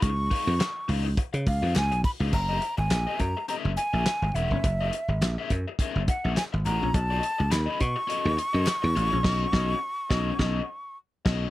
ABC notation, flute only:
X:1
M:4/4
L:1/16
Q:"Swing 16ths" 1/4=104
K:Gb
V:1 name="Flute"
d'6 z4 f2 a2 c'2 | b3 a3 b2 b2 a4 _f2- | _f6 z4 g2 a2 b2 | =a4 c'2 d'8- d'2- |
d'12 z4 |]